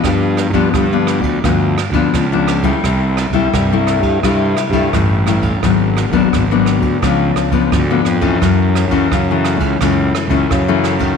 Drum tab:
RD |x-xxx-xxx-xxx-xx|x-xxx-xxx-xxx-xx|x-xxx-xxx-xxx-xx|x-xxx-xxx-xxx-xx|
SD |r-r-r-r-r-r-r-r-|r-r-r-r-r-r-r-r-|r-r-r-r-r-r-r-r-|r-r-r-r-r-r-r-r-|
BD |o--oo--oo--oo--o|o--oo--oo--oo--o|o--oo--oo--oo--o|o--oo--oo--oo--o|